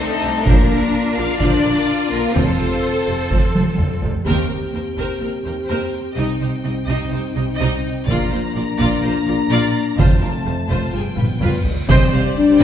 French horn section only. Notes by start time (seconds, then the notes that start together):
Already playing: A3
0.46 A#3
1.18 F4
1.39 D4
2.11 A#3
2.34 C4
4.24 C4 G4
6.18 D#4
8.08 A#3 D4
10.00 A3 C4
10.95 F3 B3
11.88 C4
12.37 D4